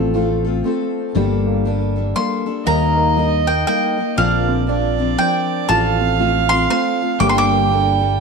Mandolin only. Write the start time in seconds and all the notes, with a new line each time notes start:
2.16 C6
2.67 A#5
3.47 G5
3.67 G5
4.18 F5
5.18 G5
5.69 A5
6.49 C6
6.70 C6
7.20 D6
7.29 C6
7.38 D6